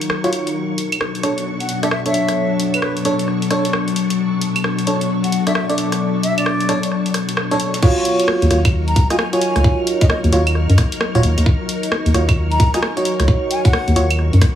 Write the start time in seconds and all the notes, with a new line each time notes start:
Already playing: D#3 F#3 D#4 A#4 D#5 C#6 F6
0.01 closed hi-hat
0.10 cross-stick
0.24 F4 F#4 C#5, closed hi-hat
0.33 open hi-hat
0.47 closed hi-hat
0.55 B2 B3 D4 A4
0.78 open hi-hat
0.82 F#3
0.92 closed hi-hat, claves
1.01 cross-stick
1.15 closed hi-hat
1.23 D4 A4 C#5, cross-stick, open hi-hat
1.38 closed hi-hat
1.60 F#5, closed hi-hat
1.69 open hi-hat
1.74 C#6
1.83 D4 A4 D5 E5, cross-stick, closed hi-hat
1.91 E5, cross-stick
2.06 D4 A4 C#5 E5, closed hi-hat
2.14 open hi-hat
2.29 cross-stick, closed hi-hat
2.60 open hi-hat
2.74 B4, closed hi-hat, claves
2.82 B4, cross-stick
2.97 closed hi-hat
3.05 D4 A4 C#5, open hi-hat
3.19 closed hi-hat
3.28 cross-stick
3.42 closed hi-hat
3.51 D4 A4 C#5, cross-stick, open hi-hat
3.65 closed hi-hat
3.73 cross-stick
3.88 closed hi-hat
3.96 open hi-hat
4.10 closed hi-hat
4.41 open hi-hat
4.56 closed hi-hat, claves
4.64 cross-stick
4.79 closed hi-hat
4.87 D4 A4 C#5, open hi-hat
5.01 closed hi-hat
5.24 F#5, closed hi-hat
5.32 open hi-hat
5.47 D4 A4 D5 E5, cross-stick, closed hi-hat
5.55 E5, cross-stick
5.69 D4 A4 D5, closed hi-hat
5.78 open hi-hat
5.92 cross-stick, closed hi-hat
6.23 E5, open hi-hat
6.38 D5, closed hi-hat, claves
6.46 cross-stick
6.60 closed hi-hat
6.69 D4 A4 C#5, cross-stick, open hi-hat
6.83 closed hi-hat
6.92 cross-stick
7.06 closed hi-hat
7.14 cross-stick, open hi-hat
7.29 closed hi-hat
7.37 cross-stick
7.51 D4 A4 C#5, closed hi-hat
7.60 open hi-hat
7.74 closed hi-hat
7.82 F#3 D#4 F4 F#4 A#4 C#5 C#6 F6, kick, crash
8.05 open hi-hat
8.20 D#5, closed hi-hat
8.28 cross-stick
8.35 A#4
8.42 D#2, closed hi-hat
8.51 D#2 F4 F#4 C#5, cross-stick, open hi-hat
8.65 kick, closed hi-hat, claves
8.88 A#5, closed hi-hat
8.96 C#2, kick, open hi-hat
9.10 F4 F#4 D#5 G#5, cross-stick, closed hi-hat
9.19 G#5, cross-stick
9.33 F4 F#4 C#5 G#5, closed hi-hat
9.41 open hi-hat
9.56 C#2, cross-stick, closed hi-hat
9.64 kick
9.87 open hi-hat
10.01 D#5, kick, closed hi-hat
10.10 D#5, cross-stick
10.24 D#2, closed hi-hat
10.32 D#2 F4 F#4 C#5, open hi-hat
10.47 closed hi-hat, claves
10.55 cross-stick
10.69 F#2, closed hi-hat
10.78 kick, cross-stick, open hi-hat
10.92 closed hi-hat
11.01 cross-stick
11.15 D#1 F4 F#4 C#5, closed hi-hat
11.23 D#2, open hi-hat
11.38 D#2, closed hi-hat
11.46 kick
11.69 open hi-hat
11.83 closed hi-hat
11.92 cross-stick
12.06 D#2, closed hi-hat
12.14 D#2 F4 F#4 C#5, cross-stick, open hi-hat
12.29 kick, closed hi-hat, claves
12.51 A#5, closed hi-hat
12.60 C#2, kick, open hi-hat
12.74 F4 F#4 D#5 G#5, cross-stick, closed hi-hat
12.83 G#5, cross-stick
12.97 D#4 F#4 C#5, closed hi-hat
13.05 open hi-hat
13.20 C#2, cross-stick, closed hi-hat
13.28 kick
13.51 G#5, open hi-hat
13.65 F#5, kick, closed hi-hat
13.73 cross-stick
13.88 D#2, closed hi-hat
13.96 D#2 F4 F#4 C#5, open hi-hat
14.11 closed hi-hat, claves
14.19 cross-stick
14.33 F#2, closed hi-hat
14.42 kick, cross-stick, open hi-hat